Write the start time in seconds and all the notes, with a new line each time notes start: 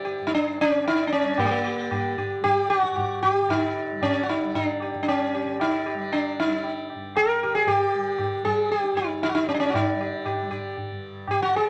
Already playing: G2 D3 G3
0.05 G4
0.20 G2
0.27 D#4
0.31 D4, tabla te
0.58 C#4, tabla te
0.71 D3
0.85 D#4, tabla na
1.07 D4, tabla te
1.13 C#4
1.22 G3
1.37 D3 A#3 G4, tabla na, tabla ge
1.45 G#3
1.51 A#3
1.66 G4
1.88 G3 G4, tabla na, tabla ge
2.17 G4, tabla ge
2.41 G3 G4, tabla tin, tabla ge
2.70 F#4, tabla na
2.83 tabla ke
2.91 G2
2.96 G4, tabla na, tabla ge
3.23 G4, tabla ge
3.41 D3
3.49 D#4, tabla na, tabla ge
3.91 G3
4.01 C#4, tabla tin, tabla ge
4.23 F#4
4.28 D#4, tabla na
4.42 G3
4.54 D4, tabla tin, tabla ge
4.81 G4, tabla na
4.94 G2, tabla ke
5.03 D4
5.08 C#4, tabla na
5.34 G4, tabla na
5.45 D3
5.60 D#4, tabla na
5.86 G4
5.94 G3
6.12 D4, tabla na
6.40 D#4
6.44 G3
6.64 tabla tin
6.90 tabla na
6.94 G2
7.16 A#4, tabla na
7.43 D3 G4
7.55 G#4
7.67 G4, tabla tin, tabla ge
7.94 G3
8.19 tabla na, tabla ge
8.42 G3 G#4, tabla ge
8.70 G4, tabla te
8.83 tabla te
8.93 G2
8.97 D#4, tabla ke
9.10 tabla te
9.22 D#4, tabla te
9.29 F#4
9.35 D#4, tabla te
9.42 D3
9.48 C#4, tabla ke
9.54 D4
9.60 C#4, tabla te
9.70 F#4
9.74 D#4, tabla na, tabla ge
9.92 G3
10.01 G4
10.25 G4, tabla na, tabla ge
10.42 G3
10.51 G4, tabla ge
10.77 tabla tin, tabla ge
10.91 G2
11.28 G4, tabla na, tabla ge
11.39 D3 F#4
11.56 G#4